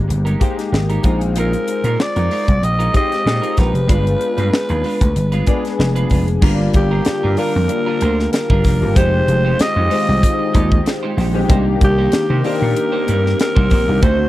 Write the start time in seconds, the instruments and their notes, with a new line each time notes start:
Already playing: grand piano G#3 A#3 D#4 G4
0.08 slap bass G1, muted clean electric guitar stroke, closed hi-hat
0.25 clean electric guitar G#3 D#4 G4 A#4, closed hi-hat
0.40 clean electric guitar G#3 D#4 G4 C5, grand piano G#3 A#3 D#4 G4, kick, closed hi-hat
0.58 muted clean electric guitar stroke, snare, closed hi-hat
0.72 slap bass G#1, muted clean electric guitar stroke, snare
0.90 clean electric guitar G#3 D#4 G4 A#4, closed hi-hat
1.03 slap bass A#1, grand piano G#3 C4 D#4 F4, clean electric guitar G#3 D#4 F4 A#4, kick, closed hi-hat
1.21 muted clean electric guitar stroke, closed hi-hat
1.36 clean electric guitar G#3 D#4 F4 A#4, alto saxophone A#4, closed hi-hat
1.53 muted clean electric guitar stroke, closed hi-hat
1.68 muted clean electric guitar stroke, closed hi-hat
1.84 slap bass A#2, clean electric guitar G#3 D#4 F4 A#4, closed hi-hat
2.00 alto saxophone D5, muted clean electric guitar stroke, snare
2.16 slap bass F2, clean electric guitar G#3 D#4 F4 A#4, closed hi-hat
2.30 clean electric guitar G#3 D#4 F4 A#4, open hi-hat
2.48 slap bass C2, muted clean electric guitar stroke, kick, closed hi-hat
2.63 slap bass A#1, alto saxophone D#5, muted clean electric guitar stroke, closed hi-hat
2.79 clean electric guitar G#3 D#4 F4 A#4, closed hi-hat
2.93 grand piano G#3 C4 D#4 G4, clean electric guitar G#3 D#4 F4 C5, alto saxophone D#5, kick, closed hi-hat
3.11 muted clean electric guitar stroke, snare, closed hi-hat
3.26 slap bass A#2, muted clean electric guitar stroke, snare
3.42 clean electric guitar G#3 D#4 F4 A#4, closed hi-hat
3.57 slap bass A#1, clean electric guitar G#3 D#4 F4 A#4, alto saxophone B4, kick, snare, closed hi-hat
3.73 slap bass F1, muted clean electric guitar stroke, closed hi-hat
3.87 slap bass G1, grand piano G#3 B3 D4 F4, clean electric guitar G#3 D4 F4 B4, kick, closed hi-hat
4.06 muted clean electric guitar stroke, closed hi-hat
4.20 muted clean electric guitar stroke, closed hi-hat
4.38 slap bass G2, clean electric guitar G#3 D4 F4 B4, closed hi-hat
4.53 muted clean electric guitar stroke, snare
4.69 slap bass D#2, clean electric guitar G#3 D4 F4 B4, closed hi-hat
4.84 clean electric guitar G#3 D4 F4 B4, open hi-hat
5.01 slap bass D2, muted clean electric guitar stroke, kick, closed hi-hat
5.15 slap bass G1, muted clean electric guitar stroke, closed hi-hat
5.32 clean electric guitar G#3 D4 F4 B4, closed hi-hat
5.47 clean electric guitar G#3 D4 F4 D5, grand piano G#3 B3 D4 G#4, kick, closed hi-hat
5.64 muted clean electric guitar stroke, snare, closed hi-hat
5.79 slap bass F1, muted clean electric guitar stroke, snare
5.96 clean electric guitar G#3 D4 F4 B4, closed hi-hat
6.10 slap bass F1, clean electric guitar G#3 D4 F4 B4, kick, open hi-hat
6.28 muted clean electric guitar stroke, closed hi-hat
6.41 slap bass G1, string machine D3 A#3 F4 G4, grand piano G3 A#3 D4 F4, clean electric guitar G3 D4 F4 A#4, kick, crash
6.59 muted clean electric guitar stroke
6.74 slap bass G1, alto saxophone G4, muted clean electric guitar stroke, kick, closed hi-hat
6.91 clean electric guitar G3 D4 F4 A#4
7.05 muted slap bass stroke, snare, closed hi-hat
7.23 slap bass G2, clean electric guitar G3 D4 F4 A#4
7.36 grand piano G3 A#3 D4 F4, clean electric guitar G3 D4 F4 A#4, alto saxophone A#4, open hi-hat
7.55 slap bass F2, muted clean electric guitar stroke
7.69 muted clean electric guitar stroke, closed hi-hat
7.86 clean electric guitar G3 D4 F4 A#4
8.01 slap bass D2, clean electric guitar G3 D4 F4 C5, closed hi-hat
8.19 muted clean electric guitar stroke, snare
8.32 alto saxophone A#4, muted clean electric guitar stroke, snare, closed hi-hat
8.50 slap bass G1, clean electric guitar G3 D4 F4 A#4, kick
8.64 slap bass F1, clean electric guitar G3 D4 F4 A#4, kick, snare, open hi-hat
8.81 slap bass G1, grand piano G3 A#3 D4 F4, muted clean electric guitar stroke
8.96 slap bass F1, string machine D#3 G#3, clean electric guitar G#3 D#4 G4 C5, grand piano G#3 C4 D#4 G4, alto saxophone C5, kick, closed hi-hat
9.13 muted clean electric guitar stroke
9.28 slap bass F1, muted clean electric guitar stroke, closed hi-hat
9.45 clean electric guitar G#3 D#4 G4 C5
9.59 alto saxophone D#5, muted clean electric guitar stroke, muted slap bass stroke, snare, closed hi-hat
9.76 slap bass F2, clean electric guitar G#3 D#4 G4 C5
9.89 clean electric guitar G#3 D#4 G4 C5, grand piano G#3 C4 D#4 F4, open hi-hat
10.07 slap bass C2, muted clean electric guitar stroke
10.23 kick, closed hi-hat
10.39 muted clean electric guitar stroke
10.54 slap bass D#2, clean electric guitar G#3 D#4 G4 D5, kick, closed hi-hat
10.71 muted clean electric guitar stroke, kick
10.85 muted clean electric guitar stroke, snare, closed hi-hat
11.03 clean electric guitar G#3 D#4 G4 C5
11.16 slap bass A#1, clean electric guitar G#3 D#4 G4 C5, snare, open hi-hat
11.34 grand piano G#3 C4 D#4 G4, muted clean electric guitar stroke
11.48 slap bass C2, clean electric guitar A#3 D#4 G4 C5, grand piano A#3 D4 D#4 G4, string machine A#3 C4, kick, closed hi-hat
11.66 muted clean electric guitar stroke
11.81 slap bass C2, alto saxophone G4, muted clean electric guitar stroke, kick, closed hi-hat
11.98 clean electric guitar A#3 D#4 G4 C5
12.12 muted clean electric guitar stroke, muted slap bass stroke, snare, closed hi-hat
12.30 slap bass C3, clean electric guitar A#3 D#4 G4 C5
12.44 grand piano A#3 D4 D#4 G4, clean electric guitar A#3 D#4 G4 C5, alto saxophone A#4, open hi-hat
12.62 slap bass A#2, muted clean electric guitar stroke
12.76 muted clean electric guitar stroke, closed hi-hat
12.92 clean electric guitar A#3 D#4 G4 C5
13.07 slap bass G2, clean electric guitar A#3 D#4 G4 D5, closed hi-hat
13.24 muted clean electric guitar stroke, snare
13.38 alto saxophone A#4, muted clean electric guitar stroke, snare, closed hi-hat
13.55 slap bass C2, clean electric guitar A#3 D#4 G4 C5, kick
13.70 slap bass A#1, clean electric guitar A#3 D#4 G4 C5, kick, open hi-hat
13.88 slap bass C2, grand piano A#3 D4 D#4 G4, muted clean electric guitar stroke
14.02 slap bass D2, string machine D3 D#4 F#4, grand piano A3 C4 D#4 F#4, clean electric guitar A3 D#4 F#4 C5, alto saxophone C5, kick, closed hi-hat
14.19 muted clean electric guitar stroke